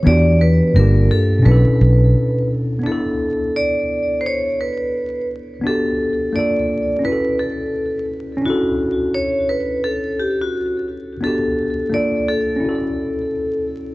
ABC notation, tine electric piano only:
X:1
M:4/4
L:1/8
Q:"Swing 16ths" 1/4=86
K:Bm
V:1 name="Tine electric piano"
[E,B,DFG]2 [G,,_B,D=FG]2 [=B,,CDEA]4 | [B,DEA]8 | [B,DFG]2 [^A,D^E=A]2 [C=EFA]4 | [CDEA]8 |
[B,DFG]2 [^A,D^E=A]2 [C=EFA]4 |]